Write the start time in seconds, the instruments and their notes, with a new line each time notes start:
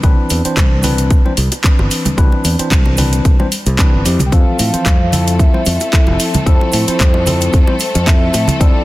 0.03 fingered electric bass C2, tine electric piano E3 C4 D4 B4, kick, closed hi-hat, cabasa
0.29 fingered electric bass E2, open hi-hat, cabasa
0.45 tine electric piano E3 C4 D4 C5, muted fingered electric bass stroke, closed hi-hat, cabasa
0.57 fingered electric bass C2, kick, clap, closed hi-hat, high conga, cabasa
0.83 tine electric piano E3 C4 D4 B4, open hi-hat, low conga, cabasa
0.98 closed hi-hat, cabasa
1.10 kick, closed hi-hat, cabasa
1.25 tine electric piano E3 C4 D4 C5, high conga
1.37 fingered electric bass C2, open hi-hat, cabasa
1.52 closed hi-hat, high bongo, cabasa
1.64 tine electric piano E3 C4 D4 B4, kick, clap, closed hi-hat, cabasa
1.79 fingered electric bass G1, high bongo
1.91 open hi-hat, cabasa
2.05 closed hi-hat, high bongo, high conga, low conga, cabasa
2.17 fingered electric bass C2, tine electric piano E3 C4 D4 B4, kick, closed hi-hat, cabasa
2.32 high bongo
2.44 fingered electric bass E2, open hi-hat, cabasa
2.59 tine electric piano E3 C4 D4 C5, muted fingered electric bass stroke, closed hi-hat, cabasa
2.71 fingered electric bass C2, kick, clap, closed hi-hat, high conga, cabasa
2.86 high bongo
2.97 tine electric piano E3 C4 D4 B4, open hi-hat, low conga, cabasa
3.13 closed hi-hat, cabasa
3.25 fingered electric bass C2, kick, closed hi-hat, cabasa
3.39 tine electric piano E3 C4 D4 C5, high bongo, high conga
3.52 open hi-hat, cabasa
3.66 fingered electric bass C2, closed hi-hat, cabasa
3.78 tine electric piano E3 C4 D4 B4, kick, clap, closed hi-hat, cabasa
3.94 fingered electric bass G1
4.05 fingered electric bass F2, tine electric piano F3 C4 E4 G4, open hi-hat, high bongo, cabasa
4.19 fingered electric bass C2, closed hi-hat, high conga, low conga, cabasa
4.26 soft synth lead G5
4.32 fingered electric bass F2, tine electric piano E3 F3 C4 A4, string section A3 C4 A4, soft synth lead F5, kick, closed hi-hat, cabasa
4.59 fingered electric bass A2, open hi-hat, cabasa
4.73 tine electric piano E3 F3 C4 C5, muted fingered electric bass stroke, closed hi-hat, cabasa
4.86 fingered electric bass F2, kick, clap, closed hi-hat, high conga, cabasa
5.12 tine electric piano F3 C4 E4 A4, open hi-hat, low conga, cabasa
5.27 closed hi-hat, cabasa
5.39 soft synth lead E5, kick, closed hi-hat, cabasa
5.53 tine electric piano F3 C4 E4 C5, high conga
5.66 fingered electric bass F2, open hi-hat, cabasa
5.80 closed hi-hat, high bongo, cabasa
5.92 tine electric piano F3 C4 E4 A4, kick, clap, closed hi-hat, cabasa
6.07 fingered electric bass F1, high bongo
6.20 open hi-hat, cabasa
6.34 closed hi-hat, high bongo, high conga, low conga, cabasa
6.46 fingered electric bass F2, tine electric piano F3 C4 E4 A4, soft synth lead C5, kick, closed hi-hat, cabasa
6.61 high bongo
6.72 fingered electric bass A2, open hi-hat, cabasa
6.87 tine electric piano F3 C4 E4 C5, muted fingered electric bass stroke, closed hi-hat, cabasa
7.00 fingered electric bass F2, kick, clap, closed hi-hat, high conga, cabasa
7.14 high bongo
7.26 tine electric piano F3 C4 E4 A4, open hi-hat, low conga, cabasa
7.41 closed hi-hat, cabasa
7.53 fingered electric bass F2, kick, closed hi-hat, cabasa
7.67 tine electric piano F3 C4 E4 C5, high bongo, high conga
7.79 open hi-hat, cabasa
7.95 fingered electric bass F2, closed hi-hat, cabasa
8.07 tine electric piano F3 C4 E4 A4, soft synth lead E5, kick, clap, closed hi-hat, cabasa
8.34 fingered electric bass A2, open hi-hat, high bongo, cabasa
8.48 closed hi-hat, high conga, low conga, cabasa
8.60 fingered electric bass F2, tine electric piano F3 C4 E4 A4, soft synth lead D5, kick, closed hi-hat, cabasa